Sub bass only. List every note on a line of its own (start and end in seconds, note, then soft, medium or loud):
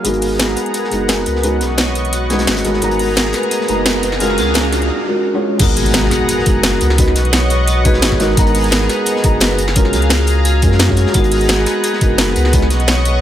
0.05 0.55 G#1 medium
0.92 1.25 F#1 medium
1.26 1.63 C#2 medium
1.61 2.46 B1 medium
2.47 2.63 G#1 medium
2.65 2.81 G#1 medium
2.82 3.33 G#1 loud
3.68 4.02 F#1 medium
4.03 4.39 F#1 loud
4.38 4.90 C#2 medium
5.60 6.11 G#1 loud
6.46 6.80 F#1 medium
6.81 7.17 C#2 loud
7.16 8.01 B1 medium
8.02 8.18 G#1 medium
8.19 8.35 G#1 medium
8.37 8.88 G#1 loud
9.24 9.57 F#1 medium
9.58 9.95 F#1 loud
9.93 10.64 C#2 medium
10.63 11.05 F#2 loud
11.15 11.65 G#1 loud
12.01 12.35 F#1 medium
12.36 12.72 C#2 loud
12.70 13.21 B1 medium